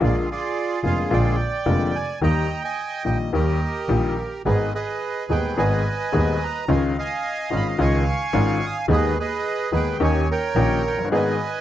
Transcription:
0.00 A#1 A#2 D3 G#3 A#3 F4 G#4
0.04 D5
0.31 F4 G#4 D5
0.83 F1 F2 D3 G#3 A#3 F4 F5
1.10 A#1 A#2 D3 G#3 A#3 F4 D5 G5
1.66 F1 F2 D3 G#3 A#3 F4
1.95 G#5
2.21 D#2 D#3 G3 A#3 G4 D#5 G5 A#5
2.64 D#5 G#5
3.05 A#1 A#2 D#3 G3 A#3 G4 G5
3.33 D#2 D#3 G3 A#3 G4 A#4 D#5
3.89 A#1 A#2 D#3 G3 A#3 G4
4.45 G#1 G#2 D#3 G#3 B3 D#4 G#4 B4 D#5
4.75 G#4 B4 D#5
5.30 D#1 D#2 D#3 G#3 B3 D#4 G#4 G5
5.57 G#1 G#2 D#3 G#3 B3 D#4 G#4 B4 D#5 G#5
6.12 D#1 D#2 D#3 G#3 B3 D#4 G#4
6.44 A#5
6.68 C#2 C#3 D#3 G#3 C#4 D#4 F4 D#5 F5 G#5
6.98 D#5 F5 G#5
7.50 G#1 G#2 D#3 G#3 C#4 D#4 F4
7.56 B5
7.78 C#2 C#3 D#3 G#3 C#4 D#4 F4 F5 G#5
7.83 C#6
8.33 G#1 G#2 D#3 G#3 C#4 D#4 F4
8.66 D#6
8.88 D#2 D#3 G#3 B3 D#4 G#4 B4
8.93 D#5
9.20 G#4 B4 D#5
9.72 D#2 D#3 G#3 B3 D#4 G#4
9.76 G5
10.00 D#2 D#3 A#3 C#4 D#4 G4 C#5
10.04 G#5
10.31 A#4 C#5 G5
10.55 A#1 A#2 D#3 A#3 C#4 D#4 G4
10.87 F1 G5
10.98 F#1
11.05 G1
11.11 G#1 G#2 D#3 G#3 B3 D#4 G#4 B4 D#5 G#5

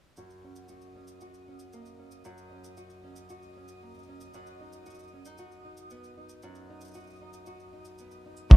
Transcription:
0.17 F#2 F#4 D#5 D#6, shaker
0.30 shaker
0.44 C#4
0.56 shaker
0.68 F#4, shaker
0.81 shaker
0.96 C#4
1.08 shaker
1.21 F#4, shaker
1.34 shaker
1.48 C#4
1.59 shaker
1.73 A#3, shaker
1.86 shaker
1.99 C#4
2.11 shaker
2.25 F#2 F#4, shaker
2.38 shaker
2.51 C#4
2.64 shaker
2.77 F#4, shaker
2.90 shaker
3.04 C#4
3.16 shaker
3.29 F#4, shaker
3.43 shaker
3.57 C#4
3.68 shaker
3.82 A#3
3.94 shaker
3.99 shaker
4.03 shaker
4.08 C#4
4.21 shaker
4.34 F#2 F#4, shaker
4.47 shaker
4.61 D#4
4.73 shaker
4.86 F#4, shaker
4.90 shaker
4.94 shaker
4.99 shaker
5.03 shaker
5.08 shaker
5.13 C#4
5.25 D#4, shaker
5.38 F#4, shaker
5.52 shaker
5.65 D#4
5.77 shaker
5.90 B3, shaker
6.04 shaker
6.17 D#4
6.29 shaker
6.42 F#2 F#4, shaker
6.55 shaker
6.70 D#4
6.81 shaker
6.85 shaker
6.88 shaker
6.91 shaker
6.94 F#4, shaker
6.97 shaker
7.04 shaker
7.07 shaker
7.10 shaker
7.13 shaker
7.16 shaker
7.18 D#4, shaker
7.33 shaker
7.46 F#4, shaker
7.60 shaker
7.73 D#4
7.85 shaker
7.98 B3, shaker
8.11 shaker
8.26 D#4
8.37 shaker
8.50 F#2, kick, shaker

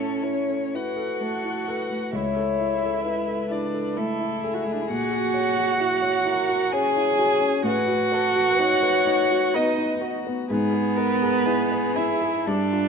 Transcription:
Already playing: A2 C#4 E4 A4 C#5
0.22 E4 C#5
0.49 A4
0.74 E4 F#4 B4 F#5
0.96 A4
1.20 A3 A4
1.44 E4
1.68 A4 B4
1.90 A3
2.12 C#2 E4 C#5 E5
2.36 A4
2.60 E4
2.83 A4
3.04 E4 B4
3.27 A4
3.50 D4 E4 D5
3.74 A4
3.96 A3 E4 A4 E5
4.20 E4
4.44 G#4 A4
4.54 F#4
4.63 A3 E4
4.72 D4
4.81 E4
4.90 A#2 F#4 F#5
5.11 F#4
5.34 C#5
5.57 F#4
5.80 E4 F#4
6.02 C#5
6.25 E4 A#4
6.49 F#4
6.72 C#4 G#4 C#5 G#5
6.96 E4
7.19 F#4
7.41 C#4
7.63 A2 F#4 B4 F#5
7.88 F#4
8.12 A4 B4
8.36 F#4
8.59 D#4 C#5
8.82 B4
9.07 D#4
9.31 F#4
9.54 B3 D#4 B4 D#5
9.77 D#4
10.00 F#4
10.27 B3
10.49 G#2 B3 G#4 B4
10.74 G#4
10.97 A#4 B4
11.22 G#4
11.46 E4 G#4
11.71 B4
11.95 E4 E5
12.22 G#4
12.45 G2 D4 A4 D5
12.73 F4

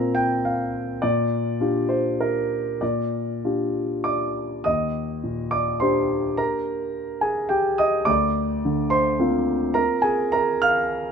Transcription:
Already playing: A#2 C4 F4 A#4 A#5
0.15 G5
0.45 F5
1.02 A#2 D5
1.60 D4 F4 G4
1.89 C5
2.21 A#4
2.81 A#2 D5
3.44 D4 F4 G4
4.04 D5 D6
4.64 D#2 D#5 D#6
5.24 A#2
5.51 D5 D6
5.80 A#3 D4 G4 C5 C6
6.37 A#4 A#5
7.21 G#4 G#5
7.49 G4 G5
7.78 D#5 D#6
8.05 D2 D5 D6
8.65 D3
8.90 C5 C6
9.19 A#3 C4 F4
9.74 A#4 A#5
10.02 G#4 G#5
10.32 A#4 A#5
10.62 F5 F6

